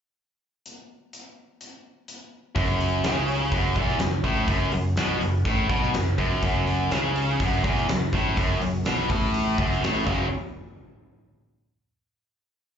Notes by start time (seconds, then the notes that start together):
0.66 closed hi-hat
1.13 closed hi-hat
1.61 closed hi-hat
2.08 closed hi-hat
2.55 F#1 F#2, kick, open hi-hat
2.80 open hi-hat
3.04 C#2 C#3, snare, open hi-hat
3.28 open hi-hat
3.52 F#1 F#2, kick, open hi-hat
3.75 E1 E2, kick, open hi-hat
3.89 snare
3.99 F#1 F#2, snare, open hi-hat
4.24 A1 A2, kick, open hi-hat
4.48 F#1 F#2, kick, open hi-hat
4.71 F#1 F#2, open hi-hat
4.96 B1 B2, snare, open hi-hat
5.19 F#1 F#2, open hi-hat
5.44 A1 A2, kick, open hi-hat
5.69 B1 B2, kick, open hi-hat
5.83 snare
5.93 F#1 F#2, snare, open hi-hat
6.18 F#1 F#2, kick, open hi-hat
6.42 F#1 F#2, kick, open hi-hat
6.67 open hi-hat
6.91 C#2 C#3, snare, open hi-hat
7.16 open hi-hat
7.40 F#1 F#2, kick, open hi-hat
7.64 E1 E2, kick, open hi-hat
7.77 snare
7.89 F#1 F#2, snare, open hi-hat
8.13 A1 A2, kick, open hi-hat
8.37 F#1 F#2, kick, open hi-hat
8.61 F#1 F#2, open hi-hat
8.85 B1 B2, snare, open hi-hat
9.09 A1 A2, kick, open hi-hat
9.34 open hi-hat
9.58 F#1 F#2, kick, open hi-hat
9.72 snare
9.81 A1 A2, snare, open hi-hat
10.05 F#1 F#2 C#3 F#3, kick, crash